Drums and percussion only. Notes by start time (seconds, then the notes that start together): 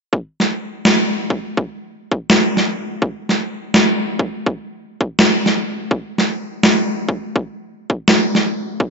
0.13 kick
0.40 snare
0.85 snare
1.30 kick
1.57 kick
2.12 kick
2.30 snare
2.57 snare
3.02 kick
3.29 snare
3.74 snare
4.19 kick
4.46 kick
5.01 kick
5.19 snare
5.46 snare
5.91 kick
6.18 snare
6.63 snare
7.09 kick
7.36 kick
7.90 kick
8.08 snare
8.35 snare
8.80 kick